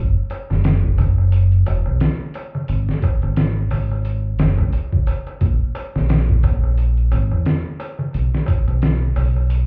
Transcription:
Already playing: F#1
0.30 open hi-hat, darbuka tek
0.50 F#1, snare, darbuka tek
0.64 snare, open hi-hat, darbuka tek
0.84 kick
0.98 F#1, kick, open hi-hat, darbuka tek, darbuka dum
1.18 darbuka tek
1.32 open hi-hat, darbuka tek
1.52 closed hi-hat
1.66 E1, open hi-hat, darbuka tek
1.86 B1, darbuka tek
2.00 snare, open hi-hat, darbuka tek
2.34 open hi-hat, darbuka tek
2.55 darbuka tek, darbuka dum
2.68 G#1, open hi-hat, darbuka tek
2.89 snare
3.02 kick, open hi-hat, darbuka tek
3.22 G#1, closed hi-hat, darbuka tek
3.36 snare, open hi-hat, darbuka tek
3.71 G#1, open hi-hat, darbuka tek, darbuka dum
3.91 darbuka tek
4.05 open hi-hat, darbuka tek
4.39 F#1, snare, open hi-hat, darbuka tek
4.58 C#2, kick, darbuka tek
4.73 open hi-hat, darbuka tek
4.93 kick, darbuka dum
5.07 open hi-hat, darbuka tek
5.27 closed hi-hat, darbuka tek
5.41 A#1, kick, open hi-hat, darbuka tek
5.75 open hi-hat, darbuka tek
5.95 A#1, snare, darbuka tek
6.09 snare, open hi-hat, darbuka tek
6.29 kick
6.43 A#1, kick, open hi-hat, darbuka tek, darbuka dum
6.64 darbuka tek
6.78 open hi-hat, darbuka tek
6.97 closed hi-hat
7.12 G#1, open hi-hat, darbuka tek
7.31 E2, darbuka tek
7.46 snare, open hi-hat, darbuka tek
7.80 open hi-hat, darbuka tek
7.99 darbuka tek, darbuka dum
8.13 B1, open hi-hat, darbuka tek
8.35 snare
8.46 kick, open hi-hat, darbuka tek
8.68 B1, closed hi-hat, darbuka tek
8.82 snare, open hi-hat, darbuka tek
9.16 B1, open hi-hat, darbuka tek, darbuka dum
9.36 darbuka tek
9.50 open hi-hat, darbuka tek

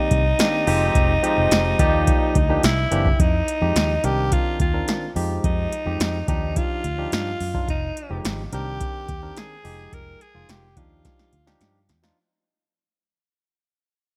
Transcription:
Already playing: D#3 A#3 C4 D#4 G4 D5
0.11 C2, kick, closed hi-hat
0.39 D#3 A#3 C4 D4 G4, snare, closed hi-hat
0.67 F1 F3 G#3 C4 D#4 G4, open hi-hat
0.95 F1, kick, closed hi-hat
1.23 F3 G#3 C4 D#4 G4, closed hi-hat
1.38 F1
1.51 F1, snare, closed hi-hat
1.79 D#2 F3 A#3 D#4 G4 D5, kick, closed hi-hat
2.07 kick, closed hi-hat
2.35 D2, kick, closed hi-hat
2.49 F3 A#3 D4 D#4 G4
2.63 C2 E4, snare, closed hi-hat
2.91 F#1 E3 A#3 C4 D4 G4, closed hi-hat
3.06 kick
3.20 F2 D#4, kick, closed hi-hat
3.48 closed hi-hat
3.61 F2 F3 G#3 D#4 G4
3.76 D#2, snare, closed hi-hat
4.03 C2 D#3 C4 D4 G4 A#4, closed hi-hat
4.32 F4, kick, closed hi-hat
4.60 D#2 F4, kick, closed hi-hat
4.73 D#3 C4 D4 A#4
4.88 snare, closed hi-hat
5.16 F2 F3 G#3 D#4 G4, open hi-hat
5.44 F2 D#4, kick, closed hi-hat
5.73 closed hi-hat
5.86 F2 F3 G#3 D#4 G4
6.00 F2, snare, closed hi-hat
6.27 D#2 F3 D4 D#4 G4, kick, closed hi-hat
6.56 F4, kick, closed hi-hat
6.84 D2, closed hi-hat
6.98 F3 D4 D#4 G4
7.12 G2 F4, snare, closed hi-hat
7.40 F#2, open hi-hat
7.54 F3 D4 D#4 F4, kick
7.68 F1 D#4, kick, closed hi-hat
7.97 closed hi-hat
8.10 F1 F3 G#3 D#4 G4
8.25 G#1, snare, closed hi-hat
8.52 C2 D#3 C4 D4 G4 A#4, closed hi-hat
8.81 kick, closed hi-hat
9.09 D#2, kick, closed hi-hat
9.22 D#3 C4 D4 A#4
9.37 G#4, snare, closed hi-hat
9.64 F1 F3 G#3 D#4 G4, open hi-hat
9.93 F1 A#4, kick, closed hi-hat
10.21 G#4, closed hi-hat
10.34 F1 F3 G#3 D#4 F4
10.49 F1 G4, snare, closed hi-hat
10.77 D#2 F3 D4 D#4 F4 G4, kick, closed hi-hat
11.05 kick, snare, closed hi-hat
11.19 snare
11.33 D2, closed hi-hat
11.46 F3 D4 D#4 G4, snare
11.61 G2, snare, closed hi-hat
11.89 E2, snare, closed hi-hat
12.03 F3 D4 D#4 F4, snare

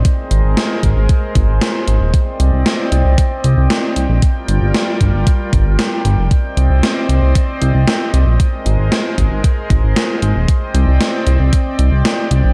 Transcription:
Already playing: C5 D#5
0.05 G#3 G#4 A#4, kick, closed hi-hat
0.31 G#1, closed hi-hat
0.44 G#1
0.57 snare, closed hi-hat
0.83 G#1, kick, closed hi-hat
0.96 G#1
1.09 kick, closed hi-hat
1.35 G#1, kick, closed hi-hat
1.48 G#1
1.61 snare, closed hi-hat
1.88 G#1, closed hi-hat
2.01 D#1
2.14 C4 D5 D#5 G5, kick, closed hi-hat
2.40 C2, closed hi-hat
2.53 C2
2.66 snare, closed hi-hat
2.92 C2, closed hi-hat
3.05 C2
3.18 kick, closed hi-hat
3.44 C2, closed hi-hat
3.57 C2
3.70 snare, closed hi-hat
3.96 C2, closed hi-hat
4.09 A#1
4.22 G3 F4 A#4 D5, kick, closed hi-hat
4.48 G1, closed hi-hat
4.62 G1
4.74 snare, closed hi-hat
5.01 G1, kick, closed hi-hat
5.14 G1
5.27 kick, closed hi-hat
5.53 G1, kick, closed hi-hat
5.66 G1
5.79 snare, closed hi-hat
6.05 G1, closed hi-hat
6.18 F1
6.31 C4 C5 D5 D#5, kick, closed hi-hat
6.57 C2, closed hi-hat
6.70 C2
6.83 snare, closed hi-hat
7.09 C2, closed hi-hat
7.22 C2
7.35 kick, closed hi-hat
7.61 C2, closed hi-hat
7.74 C2
7.88 snare, closed hi-hat
8.14 C2, closed hi-hat
8.27 A#1
8.40 G#3 G#4 A#4 C5, kick, closed hi-hat
8.66 G#1, closed hi-hat
8.79 G#1
8.92 snare, closed hi-hat
9.18 G#1, kick, closed hi-hat
9.31 G#1
9.44 kick, closed hi-hat
9.70 G#1, kick, closed hi-hat
9.83 G#1
9.96 snare, closed hi-hat
10.22 G#1, closed hi-hat
10.35 D#1
10.48 C4 D5 G5, kick, closed hi-hat
10.74 C2, closed hi-hat
10.88 C2
11.01 snare, closed hi-hat
11.27 C2, closed hi-hat
11.40 C2
11.53 kick, closed hi-hat
11.79 C2, closed hi-hat
11.92 C2
12.05 snare, closed hi-hat
12.31 C2, closed hi-hat
12.44 A#1

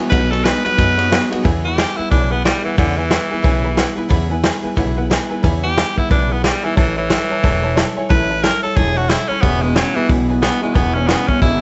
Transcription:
0.00 E2 B2
0.08 B1 B2 B3 D#4 F#4 G#4 B4 D#5 F#5, kick, ride
0.13 F#3
0.30 B2 F#3 D#4 F#4 G#4 A4 B4 D#5 G#5, ride
0.43 B2 G#3 B3 D#4 F#4 G#4 B4 D#5 G#5, snare, ride
0.64 B2 F#3 D#4 F#4 G#4 B4 D#5 F#5, muted upright bass stroke, ride
0.77 F#2 B2 F#3 B3 D#4 F#4 G#4 B4 D#5 G#5, kick, ride
0.97 B2 F#3 D#4 F#4 G#4 B4 D#5 F#5, ride
1.09 B2 F#3 B3 D#4 F#4 G#4 B4 D#5 F#5, snare, ride
1.30 B2 F#3 D#4 F#4 G#4 B4 D#5 F#5, muted upright bass stroke, ride
1.43 E2 C#3 E3 B3 E4 G#4 B4 E5 G#5, kick, open hi-hat
1.64 B3 E4 G4 G#4 B4 E5 B5
1.76 B3 E4 G#4 B4 E5 G#5, snare, open hi-hat
1.96 B3 E4 G#4 B4 E5 F#5, muted upright bass stroke
2.10 B1 C#3 E3 B3 D4 E4 G#4 B4 E5 G#5, kick, open hi-hat
2.30 B3 E4 G#4 B4 E5 B5
2.42 G3 B3 E4 G#4 B4 E5 F#5, snare, open hi-hat
2.62 E3 B3 E4 G#4 B4 E5 F#5, muted upright bass stroke
2.76 E2 C#3 D3 E3 B3 E4 G#4 B4 E5 G#5, kick, open hi-hat
2.96 E3 B3 E4 G#4 B4 E5 G#5
3.10 B3 E4 G#4 B4 E5 F#5, snare, open hi-hat
3.30 B3 E4 G#4 B4 E5 G#5, muted upright bass stroke
3.42 B1 C#3 E3 B3 E4 G#4 B4 E5 G#5, kick, open hi-hat
3.62 B3 E4 G#4 B4 E5 B5
3.76 B3 E4 G#4 B4 E5 F#5, snare, open hi-hat
3.95 B3 E4 G#4 B4 E5 B5, muted upright bass stroke
4.09 E2 C#3 E3 B3 E4 G#4 B4 E5 B5, kick, open hi-hat
4.29 B3 E4 G#4 B4 E5 G#5
4.42 B3 E4 G#4 B4 E5 G#5, snare, open hi-hat
4.62 B3 E4 G#4 B4 E5 G#5, muted upright bass stroke
4.75 B1 C#3 E3 B3 E4 G#4 B4 E5 F#5, kick, open hi-hat
4.96 B3 E4 G#4 B4 E5 F#5
5.10 B3 E4 G#4 B4 E5 G#5, snare, open hi-hat
5.29 B3 E4 G#4 B4 E5 G#5, muted upright bass stroke
5.43 E2 C#3 E3 B3 E4 G#4 B4 E5 G#5, kick, open hi-hat
5.63 B3 E4 G4 G#4 B4 E5 G#5
5.75 B3 E4 G#4 B4 E5 G#5, snare, open hi-hat
5.96 B3 E4 G#4 B4 E5 F#5, muted upright bass stroke, kick
6.08 B1 C#3 E3 B3 D4 E4 G#4 B4 E5 F#5, kick, open hi-hat
6.29 B3 E4 G#4 B4 E5 B5
6.42 G3 B3 E4 G#4 B4 E5 F#5, snare, open hi-hat
6.63 E3 B3 E4 G#4 B4 E5 G#5, muted upright bass stroke
6.76 A1 E3 F#3 A3 E4 A4 C#5 E5 A5, kick, open hi-hat
6.97 E3 E4 A4 C#5 E5 B5
7.09 F#3 E4 A4 C#5 E5 F#5, snare, open hi-hat
7.29 E4 A4 C#5 E5 A5, muted upright bass stroke
7.42 E1 F#3 A3 E4 A4 C#5 E5 A5, kick, open hi-hat
7.63 E4 A4 C#5 E5 A5
7.75 F#3 E4 A4 C#5 E5 A5, snare, open hi-hat
7.96 E4 A4 C#5 E5 G#5, muted upright bass stroke
8.09 A1 F#3 A3 E4 A4 B4 C#5 E5 A5, kick, open hi-hat
8.29 A4 C#5 E5 A5
8.42 F#3 E4 A4 A#4 C#5 E5 A5, snare, open hi-hat
8.62 E4 A4 C#5 E5 A5, muted upright bass stroke
8.76 E1 F#3 A3 E4 G#4 A4 C#5 E5 A5, kick, open hi-hat
8.96 E4 F#4 A4 C#5 E5 A5
9.09 F#3 E4 A4 C#5 E5 B5, snare, open hi-hat
9.28 C#4 E4 A4 C#5 E5 B5, muted upright bass stroke
9.42 E1 E2 B2 C#3 E3 B3 E4 G#4 B4 E5 G#5, kick, open hi-hat
9.62 E2 B2 G#3 E4 G#4 B4 E5 B5
9.66 B3
9.75 E2 C#3 F#3 B3 E4 G#4 B4 E5 G#5, snare, open hi-hat
9.95 E2 B2 E3 B3 E4 G#4 B4 E5 B5, muted upright bass stroke
10.08 B1 E2 B2 C#3 E3 B3 E4 G#4 B4 E5 G#5, kick, open hi-hat
10.28 E2 B2 B3 E4 G#4 B4 E5 G#5
10.42 E2 B2 B3 E4 G#4 B4 E5 G#5, snare, open hi-hat
10.61 E2 B2 G#3 B3 E4 G#4 B4 E5 G#5, muted upright bass stroke
10.74 E1 E2 B2 C#3 E3 B3 E4 G#4 B4 E5 G#5, kick, open hi-hat
10.94 E2 B2 B3 C#4 E4 G#4 B4 E5 G#5
11.07 E2 C#3 B3 E4 G#4 B4 E5 G#5, snare, open hi-hat
11.27 E2 B2 B3 C#4 E4 G#4 B4 E5 G#5, muted upright bass stroke, kick
11.41 G#1 E2 B2 C#3 E3 B3 E4 G#4 B4 E5 G#5, kick, open hi-hat

